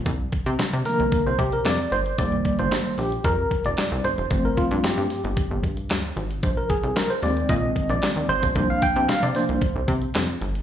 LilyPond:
<<
  \new Staff \with { instrumentName = "Tine electric piano" } { \time 4/4 \key c \minor \tempo 4 = 113 r4. bes'8. c''16 g'16 bes'16 d''8 c''8 | d''8. c''8. g'8 bes'8. d''8. c''8~ | c''16 bes'16 f'8 g'4. r4. | c''16 bes'16 aes'8 bes'16 c''16 d''8 ees''8. d''8. c''8~ |
c''16 f''16 g''8 f''16 d''16 c''4 r4. | }
  \new Staff \with { instrumentName = "Tine electric piano" } { \clef bass \time 4/4 \key c \minor r4. <d f bes>8 r2 | <ees g bes>4. r2 r8 | <f a c'>4. r2 r8 | r4. <ees aes c'>2~ <ees aes c'>8 |
<f bes d'>4. <f bes d'>8 r2 | }
  \new Staff \with { instrumentName = "Analog synth bass" } { \clef bass \time 4/4 \key c \minor c,8 r16 c16 c16 c16 r16 c,16 r16 c,16 c8 f,8 g,,8 | f,,8. g,,16 r8 bes,,8 f,8 r16 f,,16 r16 c,16 g,,16 f,,16 | g,,8 r16 g,16 g,16 g,16 r16 g,,16 r16 g,,16 g,8 d,8 aes,,8 | bes,,8. c,16 r8 ees,8 bes,8 r16 bes,,16 r16 ees,16 aes,,16 bes,,16 |
c,8 r16 c16 c16 c16 r16 c,16 r16 c,16 c8 f,8 g,,8 | }
  \new DrumStaff \with { instrumentName = "Drums" } \drummode { \time 4/4 <hh bd>8 <hh bd>16 hh16 <hc hh sn>16 hh16 hho16 hh16 <hh bd>8 <hh bd>16 hh16 <hc hh sn>8 hh16 hh16 | <hh bd>16 hh16 <hh bd>16 hh16 <hc hh sn>16 hh16 hho16 hh16 <hh bd>8 <hh bd>16 hh16 <hc hh sn>16 hh16 hh16 hh16 | <hh bd>8 <hh bd>16 hh16 <hc hh sn>16 hh16 hho16 hh16 <hh bd>8 <hh bd>16 hh16 <hc hh sn>8 hh16 hh16 | <hh bd>8 <hh bd>16 hh16 <hc hh sn>16 hh16 hho16 hh16 <hh bd>8 <hh bd>16 hh16 <hc hh sn>8 hh16 <hh bd>16 |
<hh bd>8 <hh bd>16 hh16 <hc hh sn>16 hh16 hho16 hh16 <hh bd>8 <hh bd>16 hh16 <hc hh sn>8 hh16 hh16 | }
>>